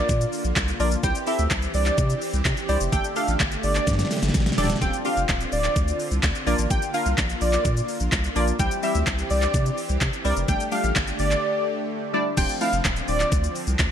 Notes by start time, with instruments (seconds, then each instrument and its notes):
Already playing: supersaw synth D3 A#3 F4, synth stab A#3 D4 F4 A#4, analog synth lead D5
0.09 sub bass A#2, kick, closed hi-hat, shaker
0.21 closed hi-hat, shaker
0.33 open hi-hat, shaker
0.44 sub bass A#1, closed hi-hat, shaker
0.56 sub bass C2, kick, clap, closed hi-hat, shaker
0.68 closed hi-hat, shaker
0.80 sub bass A#1, synth stab A#3 D4 F4 A#4, analog synth lead D5, open hi-hat, shaker
0.92 closed hi-hat, shaker
1.03 sub bass C2, supersaw synth E3 C4 G4, synth stab C4 E4 G4 C5, analog synth lead G5, kick, closed hi-hat, shaker
1.15 closed hi-hat, shaker
1.27 synth stab C4 E4 G4 A4, analog synth lead E5, open hi-hat, shaker
1.39 sub bass D2, closed hi-hat, shaker
1.51 sub bass C2, kick, clap, closed hi-hat, shaker
1.62 closed hi-hat, shaker
1.74 sub bass C2, analog synth lead D5, open hi-hat, shaker
1.86 clap, closed hi-hat, shaker
1.98 sub bass C3, kick, closed hi-hat, shaker
2.10 closed hi-hat, shaker
2.21 open hi-hat, shaker
2.33 sub bass C2, closed hi-hat, shaker
2.45 sub bass C3, kick, clap, closed hi-hat, shaker
2.57 closed hi-hat, shaker
2.69 sub bass C2, synth stab C4 E4 G4 C5, analog synth lead D5, open hi-hat, shaker
2.81 sub bass F1, closed hi-hat, shaker
2.92 sub bass G1, supersaw synth D3 A3, synth stab A3 D4 G4 A4, analog synth lead G5, kick, closed hi-hat, shaker
3.04 closed hi-hat, shaker
3.16 synth stab A3 D4 G4 A4, analog synth lead F5, open hi-hat, shaker
3.28 sub bass A1, closed hi-hat, shaker
3.40 sub bass G1, kick, clap, closed hi-hat, shaker
3.52 closed hi-hat, shaker
3.63 sub bass G1, analog synth lead D5, open hi-hat, shaker
3.75 clap, closed hi-hat, shaker
3.87 sub bass G2, kick, snare, closed hi-hat, shaker
3.93 snare
3.99 snare, closed hi-hat, shaker
4.05 snare
4.11 snare, open hi-hat, shaker
4.17 snare
4.22 sub bass G1, snare, closed hi-hat, shaker
4.28 snare
4.34 sub bass A1, kick, snare, closed hi-hat, shaker
4.40 snare
4.46 snare, closed hi-hat, shaker
4.52 snare
4.58 sub bass E1, synth stab A3 D4 G4 A4, analog synth lead D5, snare, open hi-hat, shaker
4.64 snare
4.70 snare, closed hi-hat, shaker
4.76 snare
4.81 sub bass D1, synth stab C4 D4 F4 A4, supersaw synth C4 F4, analog synth lead G5, kick, closed hi-hat, shaker
4.93 closed hi-hat, shaker
5.05 synth stab C4 D4 F4 G4, analog synth lead F5, open hi-hat, shaker
5.17 sub bass F1, closed hi-hat, shaker
5.29 sub bass D1, kick, clap, closed hi-hat, shaker
5.41 closed hi-hat, shaker
5.52 sub bass D1, analog synth lead D5, open hi-hat, shaker
5.64 clap, closed hi-hat, shaker
5.76 sub bass D2, kick, closed hi-hat, shaker
5.88 closed hi-hat, shaker
6.00 open hi-hat, shaker
6.11 sub bass C2, closed hi-hat, shaker
6.23 sub bass D2, kick, clap, closed hi-hat, shaker
6.35 closed hi-hat, shaker
6.47 sub bass A#1, synth stab A#3 D4 F4 A#4, supersaw synth A#3 F4, analog synth lead D5, open hi-hat, shaker
6.58 sub bass A1, closed hi-hat, shaker
6.70 sub bass A#1, analog synth lead G5, kick, closed hi-hat, shaker
6.82 closed hi-hat, shaker
6.94 synth stab A#3 D4 F4 A#4, analog synth lead F5, open hi-hat, shaker
7.06 sub bass C2, closed hi-hat, shaker
7.18 sub bass A#1, kick, clap, closed hi-hat, shaker
7.30 closed hi-hat, shaker
7.41 sub bass A#1, analog synth lead D5, open hi-hat, shaker
7.53 clap, closed hi-hat, shaker
7.65 sub bass A#2, kick, closed hi-hat, shaker
7.77 closed hi-hat, shaker
7.88 open hi-hat, shaker
8.00 sub bass A#1, closed hi-hat, shaker
8.12 sub bass C2, kick, clap, closed hi-hat, shaker
8.24 closed hi-hat, shaker
8.36 sub bass A#1, synth stab A#3 D4 F4 A#4, analog synth lead D5, open hi-hat, shaker
8.48 closed hi-hat, shaker
8.59 sub bass C2, supersaw synth E3 C4 G4, synth stab G3 C4 E4 G4, analog synth lead G5, kick, closed hi-hat, shaker
8.71 closed hi-hat, shaker
8.83 synth stab G3 C4 E4 G4, analog synth lead E5, open hi-hat, shaker
8.95 sub bass D2, closed hi-hat, shaker
9.07 sub bass C2, kick, clap, closed hi-hat, shaker
9.19 closed hi-hat, shaker
9.30 sub bass C2, analog synth lead D5, open hi-hat, shaker
9.42 clap, closed hi-hat, shaker
9.54 sub bass C3, kick, closed hi-hat, shaker
9.66 closed hi-hat, shaker
9.78 open hi-hat, shaker
9.89 sub bass C2, closed hi-hat, shaker
10.01 sub bass C3, kick, clap, closed hi-hat, shaker
10.13 closed hi-hat, shaker
10.24 sub bass C2, synth stab G3 C4 E4 A#4, analog synth lead D5, open hi-hat, shaker
10.37 sub bass F1, closed hi-hat, shaker
10.48 sub bass G1, supersaw synth D3 A3 G4, synth stab G3 A3 D4 G4, analog synth lead G5, kick, closed hi-hat, shaker
10.60 closed hi-hat, shaker
10.72 synth stab G3 A3 D4 G4, analog synth lead F5, open hi-hat, shaker
10.84 sub bass A1, closed hi-hat, shaker
10.96 sub bass G1, kick, clap, closed hi-hat, shaker
11.07 closed hi-hat, shaker
11.19 sub bass G1, analog synth lead D5, open hi-hat, shaker
11.31 clap, closed hi-hat, shaker
12.13 synth stab G3 A3 D4 E4, analog synth lead D5
12.37 sub bass D1, supersaw synth D3 F3 C4, synth stab A3 C4 D4 F4, analog synth lead G5, kick, closed hi-hat, crash, shaker
12.49 closed hi-hat, shaker
12.61 synth stab A3 C4 D4 E4, analog synth lead F5, open hi-hat, shaker
12.73 sub bass F1, closed hi-hat, shaker
12.85 sub bass D1, kick, clap, closed hi-hat, shaker
12.96 closed hi-hat, shaker
13.08 sub bass D1, analog synth lead D5, open hi-hat, shaker
13.20 clap, closed hi-hat, shaker
13.32 sub bass D2, kick, closed hi-hat, shaker
13.44 closed hi-hat, shaker
13.55 open hi-hat, shaker
13.67 sub bass C2, closed hi-hat, shaker
13.79 sub bass D2, kick, clap, closed hi-hat, shaker